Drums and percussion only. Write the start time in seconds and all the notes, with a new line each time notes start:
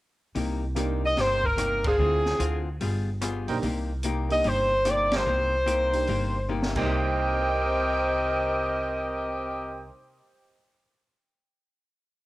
0.36 open hi-hat
0.76 closed hi-hat
1.17 snare, open hi-hat
1.44 kick
1.58 cross-stick, closed hi-hat
1.84 kick, ride
2.26 snare
2.40 closed hi-hat
2.80 open hi-hat
3.21 cross-stick, closed hi-hat
3.48 open hi-hat
3.63 open hi-hat
4.03 closed hi-hat
4.30 open hi-hat
4.44 open hi-hat
4.85 cross-stick, closed hi-hat
5.12 snare, ride
5.67 closed hi-hat
5.94 open hi-hat
6.07 open hi-hat
6.62 snare
6.76 kick, crash